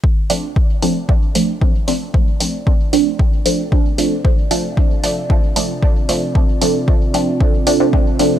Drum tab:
HH |-o-o-o-o|-o-o-o-o|-o-o-o-o|-o-o-o-o|
BD |o-o-o-o-|o-o-o-o-|o-o-o-o-|o-o-o-o-|